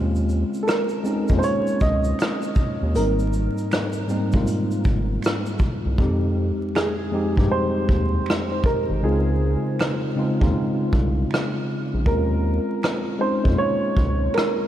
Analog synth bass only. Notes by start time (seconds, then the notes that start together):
Already playing: D#2
1.31 F2
1.82 C#2
2.82 D#2
2.96 G#1
4.34 A#1
4.86 G1
5.86 C2
5.99 F2
7.38 G2
7.89 D#2
8.90 G#1
9.04 C#2
10.42 D#2
10.93 C2
11.94 A#1
12.07 D#2
13.46 F2
13.97 C#2